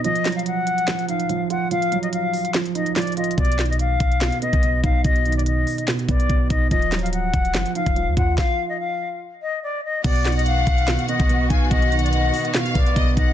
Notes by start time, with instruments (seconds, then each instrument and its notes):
0.03 grand piano F3, flute D#5, closed hi-hat
0.16 closed hi-hat
0.25 grand piano F#3, snare, clap, closed hi-hat
0.32 flute F5, closed hi-hat
0.39 closed hi-hat
0.46 flute F#5, closed hi-hat
0.67 closed hi-hat
0.78 closed hi-hat
0.88 grand piano F3, snare, clap, closed hi-hat
0.99 closed hi-hat
1.09 grand piano D#4, flute F5, closed hi-hat
1.20 closed hi-hat
1.29 grand piano F3, closed hi-hat
1.50 grand piano F4, flute F#5, closed hi-hat
1.71 grand piano F3, flute F5, closed hi-hat
1.82 closed hi-hat
1.92 grand piano F#3, closed hi-hat
2.02 flute D#5, closed hi-hat
2.13 flute F5, closed hi-hat
2.34 open hi-hat
2.45 closed hi-hat
2.54 grand piano F3, snare, clap, closed hi-hat
2.66 closed hi-hat
2.75 grand piano D#4, flute D#5, closed hi-hat
2.86 closed hi-hat
2.96 grand piano F3, flute D5, snare, clap, closed hi-hat
3.02 closed hi-hat
3.07 closed hi-hat
3.12 closed hi-hat
3.17 grand piano F4, flute D#5, closed hi-hat
3.24 closed hi-hat
3.31 closed hi-hat
3.38 808-style bass B1, grand piano B2, flute D5, kick, closed hi-hat
3.45 closed hi-hat
3.52 closed hi-hat
3.59 grand piano D#3, snare, clap, closed hi-hat
3.66 closed hi-hat
3.70 flute D#5, closed hi-hat
3.79 flute F5, closed hi-hat
4.00 808-style bass B1, kick, closed hi-hat
4.12 closed hi-hat
4.21 grand piano B2, snare, clap, closed hi-hat
4.32 closed hi-hat
4.41 grand piano B3, flute D#5, closed hi-hat
4.53 808-style bass B1, kick, closed hi-hat
4.63 grand piano B2, closed hi-hat
4.84 808-style bass B1, grand piano D#4, flute F5, kick, closed hi-hat
5.04 808-style bass B1, grand piano B2, flute D#5, kick, closed hi-hat
5.16 closed hi-hat
5.25 grand piano D#3, closed hi-hat
5.32 closed hi-hat
5.37 flute D5, closed hi-hat
5.46 flute D#5, closed hi-hat
5.67 open hi-hat
5.78 closed hi-hat
5.88 grand piano B2, snare, clap, closed hi-hat
5.99 closed hi-hat
6.09 808-style bass B1, grand piano B3, flute D5, kick, closed hi-hat
6.20 closed hi-hat
6.29 808-style bass B1, grand piano B2, kick, closed hi-hat
6.50 808-style bass B1, grand piano D#4, flute D#5, kick, closed hi-hat
6.70 808-style bass D#1, grand piano F3, flute D#5, kick, closed hi-hat
6.82 closed hi-hat
6.92 grand piano F#3, snare, clap, closed hi-hat
6.99 flute F5, closed hi-hat
7.03 808-style bass D1, closed hi-hat
7.13 flute F#5, closed hi-hat
7.34 808-style bass D#1, kick, closed hi-hat
7.45 closed hi-hat
7.54 808-style bass F#1, grand piano F3, snare, clap, closed hi-hat
7.66 closed hi-hat
7.75 grand piano D#4, flute F5, closed hi-hat
7.86 808-style bass D#1, kick, closed hi-hat
7.96 grand piano F3, closed hi-hat
8.07 808-style bass D#2
8.17 808-style bass D#2, grand piano F4, flute F#5, kick, closed hi-hat
8.38 flute F5, kick, snare
8.69 flute D#5
8.79 flute F5
9.42 flute D#5
9.63 flute D5
9.84 flute D#5
10.04 808-style bass B1, grand piano B2, string section D#3 B3 F#4, flute D5, violin section F#5, kick, closed hi-hat, crash
10.15 closed hi-hat
10.25 grand piano D#3, snare, clap, closed hi-hat
10.32 closed hi-hat
10.36 flute D#5, closed hi-hat
10.46 flute F5, closed hi-hat
10.67 808-style bass B1, kick, closed hi-hat
10.78 closed hi-hat
10.88 grand piano B2, snare, clap, closed hi-hat
10.99 closed hi-hat
11.08 grand piano B3, flute D#5, closed hi-hat
11.20 808-style bass B1, kick, closed hi-hat
11.29 grand piano B2, closed hi-hat
11.50 808-style bass B1, grand piano D#4, flute F5, violin section G#5, kick, closed hi-hat
11.71 808-style bass B1, grand piano B2, flute D#5, violin section F#5, kick, closed hi-hat
11.82 closed hi-hat
11.92 grand piano D#3, closed hi-hat
11.99 closed hi-hat
12.03 flute D5, closed hi-hat
12.13 flute D#5, closed hi-hat
12.34 open hi-hat
12.45 closed hi-hat
12.55 grand piano B2, violin section F5, snare, clap, closed hi-hat
12.66 closed hi-hat
12.75 808-style bass B1, grand piano B3, flute D5, kick, closed hi-hat
12.86 closed hi-hat
12.96 808-style bass B1, grand piano B2, violin section D#5, kick, closed hi-hat
13.17 808-style bass B1, grand piano D#4, flute D#5, violin section F#5, kick, closed hi-hat